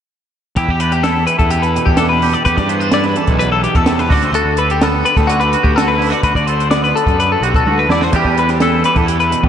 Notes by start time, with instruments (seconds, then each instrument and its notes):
0.56 picked electric bass E2, clean electric guitar E2 E4 G4, kick, closed hi-hat
0.68 picked electric bass E2, clean electric guitar G4, kick
0.80 clean electric guitar D4 B4, closed hi-hat
0.92 clean electric guitar G4, closed hi-hat
1.03 clean electric guitar E4 A4, snare, closed hi-hat
1.27 clean electric guitar E3 B4, closed hi-hat
1.39 picked electric bass E2, clean electric guitar A4, kick, closed hi-hat
1.50 clean electric guitar G4, closed hi-hat
1.62 clean electric guitar B4, closed hi-hat
1.75 clean electric guitar B2, closed hi-hat
1.86 picked electric bass E2, clean electric guitar G4, kick
1.97 clean electric guitar D4 A4, snare, closed hi-hat
2.09 clean electric guitar B4
2.22 clean electric guitar G4, open hi-hat
2.34 clean electric guitar D5, closed hi-hat
2.45 clean electric guitar E2 G4 B4, picked electric bass E2, kick, closed hi-hat
2.57 picked electric bass G2, clean electric guitar D5, kick, snare, closed hi-hat
2.69 clean electric guitar B3 C5, closed hi-hat
2.80 clean electric guitar D4, closed hi-hat
2.92 clean electric guitar E4 D5, snare, closed hi-hat
3.04 clean electric guitar B4, snare, closed hi-hat
3.16 clean electric guitar E3 A4, closed hi-hat
3.27 picked electric bass B1, kick, closed hi-hat
3.39 clean electric guitar B4, closed hi-hat
3.52 clean electric guitar A4
3.63 clean electric guitar B2 G4, closed hi-hat
3.75 picked electric bass E2, clean electric guitar A4, kick, closed hi-hat
3.86 clean electric guitar C3, snare, closed hi-hat
3.99 clean electric guitar B4, closed hi-hat
4.09 picked electric bass D2, clean electric guitar D3 F#4 D5, kick, open hi-hat
4.22 clean electric guitar C5, snare, closed hi-hat
4.32 picked electric bass D2, clean electric guitar F#4 A4, closed hi-hat
4.44 picked electric bass D2
4.57 clean electric guitar A4 B4, closed hi-hat
4.70 clean electric guitar G4, closed hi-hat
4.81 clean electric guitar B3 A4, snare, closed hi-hat
5.05 clean electric guitar B4, closed hi-hat
5.17 picked electric bass D2, clean electric guitar A4, kick, snare, closed hi-hat
5.27 clean electric guitar D3 F#4, closed hi-hat
5.40 clean electric guitar B4, closed hi-hat
5.53 clean electric guitar F#4, closed hi-hat
5.63 picked electric bass D2, clean electric guitar G4, kick
5.76 clean electric guitar F#4 A4, snare, closed hi-hat
5.88 clean electric guitar B4
5.98 clean electric guitar D3 E4, open hi-hat
6.10 clean electric guitar F#4 D5, closed hi-hat
6.23 picked electric bass D2, clean electric guitar F#4 B4, kick, closed hi-hat
6.35 picked electric bass D2, clean electric guitar D5, kick, closed hi-hat
6.47 clean electric guitar A4 C5, closed hi-hat
6.60 closed hi-hat
6.70 clean electric guitar B3 D5, snare, closed hi-hat
6.84 clean electric guitar B4, closed hi-hat
6.96 clean electric guitar A4, closed hi-hat
7.06 picked electric bass F#2, kick, closed hi-hat
7.19 clean electric guitar D3 B4, closed hi-hat
7.32 clean electric guitar A4
7.41 picked electric bass B1, clean electric guitar F#4 G4, closed hi-hat
7.54 clean electric guitar A4, kick, closed hi-hat
7.66 picked electric bass D2, clean electric guitar F#4, high tom
7.79 clean electric guitar B4
7.89 picked electric bass E2, clean electric guitar D3 E4 D5, snare
8.01 clean electric guitar F#4 C5, snare
8.12 clean electric guitar E2 E3 G3 D4 G4, picked electric bass E2, kick, closed hi-hat, crash
8.16 clean electric guitar G4
8.25 picked electric bass E2, kick
8.37 clean electric guitar D4 B4, closed hi-hat
8.49 clean electric guitar G4, snare, closed hi-hat
8.60 clean electric guitar E4 A4, snare, closed hi-hat
8.84 clean electric guitar E3 B4, closed hi-hat
8.95 picked electric bass E2, clean electric guitar A4, kick, closed hi-hat
9.08 clean electric guitar G4, closed hi-hat
9.20 clean electric guitar B4, closed hi-hat
9.31 clean electric guitar B2, closed hi-hat
9.43 picked electric bass E2, clean electric guitar G4, kick